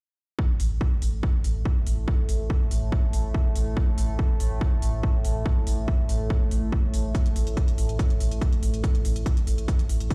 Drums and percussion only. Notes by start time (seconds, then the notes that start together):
0.39 kick
0.60 open hi-hat
0.81 kick
1.02 open hi-hat
1.23 kick
1.44 open hi-hat
1.65 kick
1.87 open hi-hat
2.08 kick
2.29 open hi-hat
2.50 kick
2.71 open hi-hat
2.92 kick
3.13 open hi-hat
3.34 kick
3.56 open hi-hat
3.77 kick
3.98 open hi-hat
4.19 kick
4.40 open hi-hat
4.61 kick
4.82 open hi-hat
5.03 kick
5.25 open hi-hat
5.46 kick
5.67 open hi-hat
5.88 kick
6.09 open hi-hat
6.30 kick
6.51 open hi-hat
6.72 kick
6.94 open hi-hat
7.15 kick, closed hi-hat
7.26 closed hi-hat
7.36 open hi-hat
7.47 closed hi-hat
7.57 kick, closed hi-hat
7.68 closed hi-hat
7.78 open hi-hat
7.89 closed hi-hat
7.99 kick, closed hi-hat
8.10 closed hi-hat
8.20 open hi-hat
8.31 closed hi-hat
8.41 kick, closed hi-hat
8.53 closed hi-hat
8.63 open hi-hat
8.74 closed hi-hat
8.84 kick, closed hi-hat
8.95 closed hi-hat
9.05 open hi-hat
9.16 closed hi-hat
9.26 kick, closed hi-hat
9.37 closed hi-hat
9.47 open hi-hat
9.58 closed hi-hat
9.68 kick, closed hi-hat
9.79 closed hi-hat
9.89 open hi-hat
10.00 closed hi-hat
10.10 kick, closed hi-hat